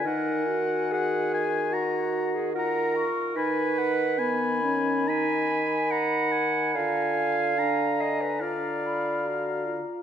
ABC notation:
X:1
M:4/4
L:1/16
Q:1/4=72
K:Ebm
V:1 name="Flute"
a8 g4 g2 d'2 | =b2 z2 b4 ^a2 ^g2 b4 | b2 a6 b2 c'2 b4 |]
V:2 name="Oboe"
g4 g2 a2 b4 b2 z2 | ^g2 ^f2 g4 =b4 ^a2 g2 | a4 b4 f6 z2 |]
V:3 name="Clarinet"
B4 A4 G3 A B4 | =B6- B z ^g4 ^f4 | f6 e c =d8 |]
V:4 name="French horn"
E2 G6 G4 F4 | ^D4 =B,2 ^C2 D6 z2 | F4 =D4 F4 G2 F2 |]
V:5 name="Bassoon" clef=bass
E,12- E,2 z2 | ^D,16 | =D,12- D,2 z2 |]